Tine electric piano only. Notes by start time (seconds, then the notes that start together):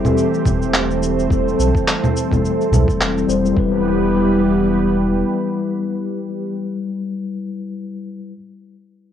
Already playing: G3 C4 A4
0.03 G3 C4 A4
1.29 G3 C4
1.33 A4
2.30 G3 C4 A4
3.27 G3 C4 C5
3.52 G3 E4
3.59 B4